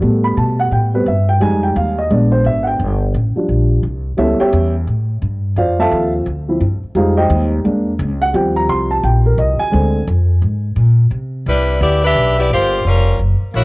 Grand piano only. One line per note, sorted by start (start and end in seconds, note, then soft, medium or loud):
0.01 0.93 G3 soft
0.01 1.37 A3 medium
0.01 0.93 B3 soft
0.24 0.37 B5 medium
0.38 0.59 A5 medium
0.60 0.72 F#5 medium
0.72 0.94 G5 medium
0.94 1.06 G3 soft
0.94 1.06 B3 soft
0.94 1.06 C4 medium
0.94 1.07 B4 medium
1.08 1.29 E5 medium
1.29 1.41 G5 medium
1.40 1.95 G3 medium
1.40 1.95 G#3 soft
1.40 1.96 D#4 medium
1.40 1.63 G#5 medium
1.63 1.76 G5 medium
1.77 1.98 F5 medium
1.99 2.11 D#5 medium
2.10 2.76 G#3 medium
2.10 2.77 B3 soft
2.10 2.77 D4 medium
2.10 2.33 D5 medium
2.32 2.45 C5 medium
2.46 2.67 E5 medium
2.63 2.65 F#5 medium
2.67 3.00 G5 medium
3.36 3.81 F3 soft
3.36 3.82 G3 soft
3.36 3.82 D4 medium
4.17 4.72 G3 soft
4.17 4.72 B3 soft
4.17 4.72 C#4 medium
4.17 4.40 E4 medium
4.17 4.40 A4 medium
4.17 4.39 C#5 medium
4.17 4.39 E5 medium
4.40 4.73 G4 medium
4.40 4.73 C#5 medium
4.40 4.73 E5 medium
4.40 4.73 G5 medium
5.58 5.78 F4 medium
5.58 5.79 C5 medium
5.58 5.79 D5 medium
5.58 5.79 F5 medium
5.79 6.24 F3 medium
5.79 6.24 C4 medium
5.79 6.25 F4 medium
5.79 6.12 A4 medium
5.79 6.12 E5 medium
5.79 6.12 F5 medium
5.79 6.12 A5 medium
6.48 6.60 F3 soft
6.48 6.60 C4 soft
6.48 6.60 E4 medium
6.95 7.61 G3 medium
6.95 7.62 G#3 soft
6.95 7.62 D#4 medium
6.95 7.18 F4 medium
6.95 7.18 G#4 medium
6.95 7.16 C5 medium
6.95 7.18 F5 medium
7.17 7.50 G4 medium
7.17 7.50 C5 medium
7.17 7.50 D#5 medium
7.17 7.50 G5 medium
7.64 7.91 G#3 medium
7.64 7.91 A#3 soft
7.64 7.91 D4 medium
8.22 8.34 F#5 loud
8.33 9.68 F3 soft
8.33 9.69 G3 medium
8.33 9.69 C4 medium
8.33 8.56 G5 medium
8.56 8.69 A#5 medium
8.70 8.91 C6 loud
8.91 9.03 A5 medium
9.04 9.25 G5 medium
9.26 9.38 A#4 medium
9.39 9.60 D#5 medium
9.59 10.04 G#5 loud
9.71 9.98 D3 medium
9.71 9.98 G#3 soft
9.71 9.98 C4 medium